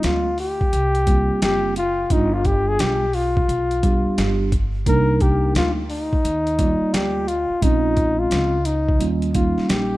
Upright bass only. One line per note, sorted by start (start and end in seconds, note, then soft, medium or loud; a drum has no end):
0.04 0.69 D2 medium
0.73 1.27 C2 medium
1.29 muted upright bass stroke soft
1.42 2.07 F#1 medium
2.10 2.76 G1 medium
2.80 3.45 B1 medium
3.48 4.02 B1 medium
4.05 muted upright bass stroke soft
4.18 4.83 G1 medium
4.86 5.52 C2 medium
5.55 6.21 D2 medium
6.24 6.78 D#2 medium
6.81 muted upright bass stroke soft
6.93 7.47 D2 medium
7.50 muted upright bass stroke soft
7.62 8.28 A#1 medium
8.31 8.97 C#2 medium
9.00 9.54 D#2 medium
9.57 muted upright bass stroke soft
9.70 9.97 A#1 medium